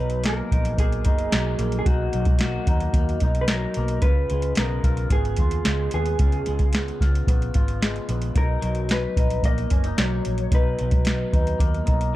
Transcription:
Already playing: fingered electric bass B1, clean electric guitar B2 F#3 B3 D#4 B4
0.10 closed hi-hat
0.24 clean electric guitar A#3 A#4, snare, closed hi-hat
0.51 fingered electric bass A#1, clean electric guitar D#4, kick, closed hi-hat
0.65 closed hi-hat
0.78 fingered electric bass A#1, clean electric guitar A#3 G#4, kick, closed hi-hat
0.92 closed hi-hat
1.05 fingered electric bass F#1, clean electric guitar D#4, kick, closed hi-hat
1.19 closed hi-hat
1.32 fingered electric bass B1, clean electric guitar F#3, snare, closed hi-hat
1.58 fingered electric bass A#1, clean electric guitar A#3, closed hi-hat
1.72 closed hi-hat
1.79 clean electric guitar G#4
1.86 fingered electric bass B1, clean electric guitar B2 D#4 F#4, kick, closed hi-hat
2.13 fingered electric bass B1, clean electric guitar F#3, closed hi-hat
2.25 kick, closed hi-hat
2.39 clean electric guitar A#3 F#4, snare, closed hi-hat
2.67 fingered electric bass D#2, clean electric guitar D#4, kick, closed hi-hat
2.80 closed hi-hat
2.93 fingered electric bass D#2, clean electric guitar A#3, kick, closed hi-hat
3.09 closed hi-hat
3.20 fingered electric bass B1, clean electric guitar D#4, kick, closed hi-hat
3.35 closed hi-hat
3.41 clean electric guitar B4
3.48 clean electric guitar F#3 A#4, snare, closed hi-hat
3.74 fingered electric bass B1, clean electric guitar A#3, closed hi-hat
3.88 closed hi-hat
4.02 fingered electric bass C#2, clean electric guitar C#3 F4 B4, kick, closed hi-hat
4.30 fingered electric bass C#2, clean electric guitar G#3, closed hi-hat
4.42 closed hi-hat
4.55 fingered electric bass B1, clean electric guitar B3 A#4, snare, closed hi-hat
4.84 fingered electric bass B1, clean electric guitar F4, kick, closed hi-hat
4.97 closed hi-hat
5.10 fingered electric bass G#1, clean electric guitar B3 G#4, kick, closed hi-hat
5.25 closed hi-hat
5.37 fingered electric bass D#2, clean electric guitar F4, kick, closed hi-hat
5.51 closed hi-hat
5.65 fingered electric bass C#2, clean electric guitar G#3, snare, closed hi-hat
5.91 fingered electric bass D#2, clean electric guitar B3 G#4, closed hi-hat
6.06 closed hi-hat
6.19 fingered electric bass C#2, clean electric guitar C#3 F4, kick, closed hi-hat
6.32 closed hi-hat
6.46 fingered electric bass C#2, clean electric guitar G#3, closed hi-hat
6.59 kick, closed hi-hat
6.73 clean electric guitar B3, snare, closed hi-hat
6.88 closed hi-hat
7.01 fingered electric bass C#2, clean electric guitar F4, kick, snare, closed hi-hat
7.15 closed hi-hat
7.27 fingered electric bass A#1, clean electric guitar B3, kick, closed hi-hat
7.42 closed hi-hat
7.54 fingered electric bass G#1, clean electric guitar F4, kick, closed hi-hat
7.68 closed hi-hat
7.82 clean electric guitar G#3, snare, closed hi-hat
7.96 closed hi-hat
8.09 fingered electric bass A#1, clean electric guitar B3, closed hi-hat
8.22 closed hi-hat
8.35 fingered electric bass B1, clean electric guitar B2 D#4 A#4, kick, closed hi-hat
8.61 fingered electric bass B1, clean electric guitar F#3, closed hi-hat
8.75 closed hi-hat
8.89 clean electric guitar B4, snare, closed hi-hat
9.17 fingered electric bass A#1, clean electric guitar D#4, kick, closed hi-hat
9.30 closed hi-hat
9.43 fingered electric bass A#1, clean electric guitar A#3 D#5, kick, closed hi-hat
9.58 closed hi-hat
9.70 fingered electric bass F#1, clean electric guitar C#4, kick, closed hi-hat
9.84 clean electric guitar D#4, closed hi-hat
9.98 fingered electric bass B1, clean electric guitar F#3 C#5, snare, closed hi-hat
10.25 fingered electric bass A#1, closed hi-hat
10.38 closed hi-hat
10.52 fingered electric bass B1, clean electric guitar B2 D#4 B4, kick, closed hi-hat
10.79 fingered electric bass B1, clean electric guitar F#3, closed hi-hat
10.91 kick, closed hi-hat
11.05 snare, closed hi-hat
11.33 fingered electric bass D#2, clean electric guitar D#4, kick, closed hi-hat
11.47 closed hi-hat
11.59 fingered electric bass D#2, clean electric guitar A#3, kick, closed hi-hat
11.74 closed hi-hat
11.86 fingered electric bass B1, clean electric guitar D#4, kick, closed hi-hat
12.01 closed hi-hat

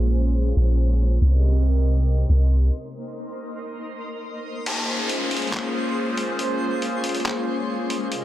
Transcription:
Already playing: 808-style bass A#1, synth texture G#3 C#4 C5, analog synth pad A#3 C#4 F4 G#4 C5
0.56 808-style bass A#1
1.21 808-style bass C2, analog synth pad C3 C4 G4 A#4 D#5, synth texture A#3 D#4
2.29 808-style bass C2
4.66 synth texture G#3 C#4 C5, analog synth pad A#3 C#4 F4 G#4 C5, closed hi-hat, crash, downlifter
5.09 closed hi-hat
5.31 closed hi-hat
5.37 closed hi-hat
5.42 closed hi-hat
5.47 closed hi-hat
5.53 clap, closed hi-hat
6.18 closed hi-hat
6.39 closed hi-hat
6.82 closed hi-hat
7.04 closed hi-hat
7.09 closed hi-hat
7.15 closed hi-hat
7.20 closed hi-hat
7.25 clap, closed hi-hat
7.90 closed hi-hat
8.12 analog synth pad C3 C4 G4 A#4 D#5, synth texture A#3 D#4 C5, closed hi-hat

